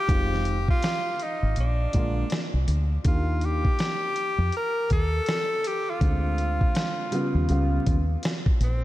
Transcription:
Already playing: G4
0.07 F1 D#3 G#3 C4 F4, kick, closed hi-hat
0.34 snare
0.45 closed hi-hat
0.68 F4, kick
0.82 snare, closed hi-hat
1.19 D#4, closed hi-hat
1.43 G#1
1.56 A#1 D4, closed hi-hat
1.93 A#1 D3 G#3 A#3 F4, kick, closed hi-hat
2.30 snare, closed hi-hat
2.53 C2
2.68 D2, closed hi-hat
3.04 D#2 D#3 A#3 D4 F4 G4, kick, closed hi-hat
3.41 G4, closed hi-hat
3.65 kick
3.79 snare, closed hi-hat
4.16 closed hi-hat
4.38 F2
4.52 closed hi-hat
4.57 A#4
4.90 D#2 A4, kick, closed hi-hat
5.26 snare, closed hi-hat
5.64 G4, closed hi-hat
5.90 F4
6.00 D2 D3 G#3 C4 F4, kick, closed hi-hat
6.38 closed hi-hat
6.61 kick
6.75 snare, closed hi-hat
7.11 C#3 G3 B3 F4, closed hi-hat
7.35 D#2
7.48 C#2 C#3 G3 B3 F4, closed hi-hat
7.87 D#2, kick, closed hi-hat
8.23 snare, closed hi-hat
8.46 kick
8.60 A#1 C4, closed hi-hat

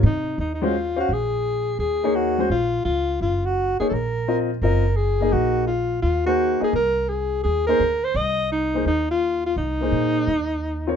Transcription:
0.03 C3 D#4
0.38 D#2 D#4
0.54 D#4
0.62 G#3 C#4 F4 F#4 C5
0.96 C#4 F#4 C5 F5
1.09 A#1
1.13 G#4
1.79 D#2 G#4
2.03 A#3 D#4 G#4 C#5
2.15 F#4
2.38 G#3 C#4 F#4 C5
2.50 A#1 F4
2.85 C#2 F4
3.21 F#1 F4
3.45 F#4
3.80 A#3 D#4 G#4 C#5, muted upright bass stroke
3.89 A#1 A4
3.94 A#4
4.28 C4 F4 A#4 D#5
4.62 F#1 C4 F4 A#4 D#5
4.96 G#4
5.21 A#3 D#4 G#4 D#5
5.32 A#1 F#4
5.67 F4
6.02 D#2 F4
6.26 A#3 D#4 F#4 G#4 C5
6.60 A#3 D#4 G#4 D#5, muted upright bass stroke
6.73 C2 A#4
7.08 G#4
7.43 D#2 G#4
7.66 A#3 D#4 G#4 A#4 C5
7.80 D2
8.04 C5
8.14 C2 D#5
8.52 D#4
8.74 A#3 D#4 G#4 C5
8.85 D#2 D#4
9.11 F4
9.46 F4
9.56 C2 D#4
9.81 A#3 D#4 G#4 C5
9.92 A#2
10.28 D#2
10.87 C4 F4 A#4 C#5

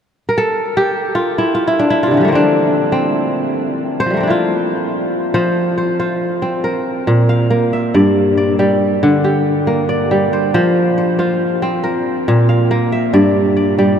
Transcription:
0.29 A#4
0.38 A4
0.77 G4
1.15 F4
1.38 E4
1.55 F4
1.68 E4
1.79 D4
1.90 E4
2.03 C3 F4
2.11 D3 E3
2.17 F3 G3
2.24 A3 A#3
2.32 C4 D4
2.92 C4
4.00 C5
4.06 F3
4.10 G3 A3
4.17 A#3 C4
4.23 D4
4.27 E4 F4
5.34 F3 C5
5.78 C5
5.99 F4 C5
6.42 C4
6.64 A#4
7.07 A#2
7.29 F5
7.50 A#3
7.73 E5
7.94 G2 D5
8.37 D5
8.59 G3 D5
9.03 D3
9.24 G4
9.67 A#3
9.89 D5
10.11 G3
10.33 C5
10.54 F3 C5
10.98 C5
11.19 F4 C5
11.62 C4
11.84 A#4
12.28 A#2
12.49 F5
12.71 A#3
12.92 E5
13.13 G2 D5
13.57 D5
13.78 G3 D5

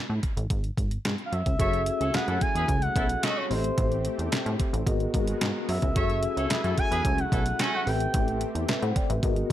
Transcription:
0.10 A2
0.23 kick, closed hi-hat
0.37 A1, closed hi-hat
0.50 G#1, kick, closed hi-hat
0.64 closed hi-hat
0.77 G#1, kick, closed hi-hat
0.91 closed hi-hat
1.05 G#2, snare, clap, closed hi-hat
1.18 closed hi-hat
1.26 F5
1.32 F#2 E5, closed hi-hat
1.46 C#2, kick, closed hi-hat
1.59 F#1 F#3 A3 C#4 E4 F#4 G#4 A4 C#5 E5 G#5, kick, closed hi-hat
1.73 closed hi-hat
1.86 closed hi-hat
2.00 C#2 C#4 A4 C#5, closed hi-hat
2.14 F#2 E4 G#4 B4 F#5, snare, clap, closed hi-hat
2.28 F#2 C#4 E4 A4, closed hi-hat
2.41 G#5, kick, closed hi-hat
2.55 E2 E4 G#4 B4, closed hi-hat
2.68 C#2, kick, closed hi-hat
2.82 F#5, closed hi-hat
2.96 B1 C#4 E4 A4, kick, closed hi-hat
3.09 closed hi-hat
3.23 A3 C#4 F#4 D#5, snare, clap, closed hi-hat
3.37 C#5
3.50 A1 A3 C4 G4 A4 C5 D#5, open hi-hat
3.58 E5
3.64 closed hi-hat
3.78 A1, kick, closed hi-hat
3.92 closed hi-hat
4.05 closed hi-hat
4.19 E2, closed hi-hat
4.32 A2, snare, clap, closed hi-hat
4.46 A2, closed hi-hat
4.60 kick, closed hi-hat
4.73 A1, closed hi-hat
4.86 G#1 G#3 B3 F#4 G#4 A#4 D#5, kick, closed hi-hat
5.00 closed hi-hat
5.14 G#1, kick, closed hi-hat
5.28 closed hi-hat
5.41 G#2, snare, clap, closed hi-hat
5.69 F#2 E5, open hi-hat
5.82 C#2, kick, closed hi-hat
5.95 F#1 F#3 A3 C#4 E4 F#4 G#4 A4 C#5 E5 G#5, kick, closed hi-hat
6.10 closed hi-hat
6.23 closed hi-hat
6.37 C#2 C#4 A4 C#5, closed hi-hat
6.50 F#2 E4 G#4 B4, snare, clap, closed hi-hat
6.64 F#2 C#4 E4 A4, closed hi-hat
6.78 G#5, kick, closed hi-hat
6.91 E2 E4 G#4 B4, closed hi-hat
7.05 C#2, kick, closed hi-hat
7.18 F#5, closed hi-hat
7.32 B1 C#4 E4 A4, kick, closed hi-hat
7.46 closed hi-hat
7.59 A3 C#4 F#4 G#5, snare, clap, closed hi-hat
7.74 F#5
7.86 A1 A3 C4 G4 A4 B4 E5 G5, open hi-hat
8.00 closed hi-hat
8.14 A1, kick, closed hi-hat
8.28 closed hi-hat
8.41 closed hi-hat
8.55 E2, closed hi-hat
8.69 A2 B4 E5, snare, clap, closed hi-hat
8.82 A2 C5 F#5, closed hi-hat
8.96 D5 G5, kick, closed hi-hat
9.10 A1 B4 E5, closed hi-hat
9.23 G#1 G#3 B3 F#4 G#4 A#4 D#5, kick, closed hi-hat
9.36 closed hi-hat

